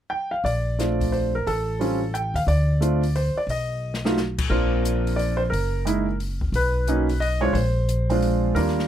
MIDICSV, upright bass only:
0, 0, Header, 1, 2, 480
1, 0, Start_track
1, 0, Key_signature, -2, "major"
1, 0, Tempo, 337838
1, 638, Time_signature, 3, 2, 24, 8
1, 12610, End_track
2, 0, Start_track
2, 0, Title_t, "Upright bass"
2, 0, Program_c, 0, 32
2, 621, Note_on_c, 0, 34, 69
2, 2016, Note_off_c, 0, 34, 0
2, 2082, Note_on_c, 0, 33, 67
2, 3287, Note_off_c, 0, 33, 0
2, 3324, Note_on_c, 0, 39, 61
2, 3495, Note_off_c, 0, 39, 0
2, 3503, Note_on_c, 0, 38, 69
2, 4718, Note_off_c, 0, 38, 0
2, 4925, Note_on_c, 0, 35, 70
2, 6327, Note_off_c, 0, 35, 0
2, 6391, Note_on_c, 0, 34, 74
2, 7779, Note_off_c, 0, 34, 0
2, 7839, Note_on_c, 0, 30, 69
2, 9222, Note_off_c, 0, 30, 0
2, 9267, Note_on_c, 0, 35, 70
2, 10656, Note_off_c, 0, 35, 0
2, 10704, Note_on_c, 0, 34, 71
2, 12093, Note_off_c, 0, 34, 0
2, 12142, Note_on_c, 0, 39, 65
2, 12610, Note_off_c, 0, 39, 0
2, 12610, End_track
0, 0, End_of_file